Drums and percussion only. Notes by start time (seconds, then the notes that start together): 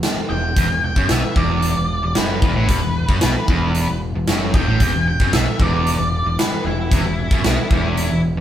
0.03 snare, closed hi-hat
0.56 kick, closed hi-hat
0.96 kick
1.09 snare, closed hi-hat
1.36 kick
1.62 closed hi-hat
2.15 snare, closed hi-hat
2.42 kick
2.69 kick, closed hi-hat
3.09 kick
3.21 snare, closed hi-hat
3.48 kick
3.74 closed hi-hat
4.27 snare, closed hi-hat
4.54 kick
4.80 kick, closed hi-hat
5.20 kick
5.33 snare, closed hi-hat
5.60 kick
5.86 closed hi-hat
6.39 snare, closed hi-hat
6.91 kick, closed hi-hat
7.31 kick
7.44 snare, closed hi-hat
7.71 kick
7.97 closed hi-hat